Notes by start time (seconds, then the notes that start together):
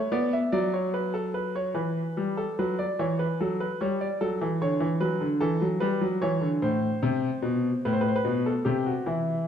Already playing: C#5
0.12 B3 D5
0.33 E5
0.52 F#3 D5
0.74 C#5
0.94 B4
1.14 A4
1.34 B4
1.56 C#5
1.74 E3 B4
2.17 G3
2.37 A4
2.59 F#3 B4
2.79 D5
2.99 E3 C#5
3.19 B4
3.40 F#3 A4
3.60 B4
3.81 G3 C#5
4.01 D5
4.21 F#3 A4
4.41 E3
4.61 D3 C#5
4.80 E3
5.01 F#3 B4
5.21 D3
5.41 E3 A4
5.61 F#3
5.80 G3 B4
6.01 F#3
6.22 E3 C#5
6.41 D3
6.62 A2 C5
7.03 C3
7.42 B2
7.85 A2 B4
7.93 C5
8.01 B4
8.08 C5
8.16 B4
8.25 B2
8.46 A4
8.65 C3 G4
8.86 F#4
9.06 E3 E4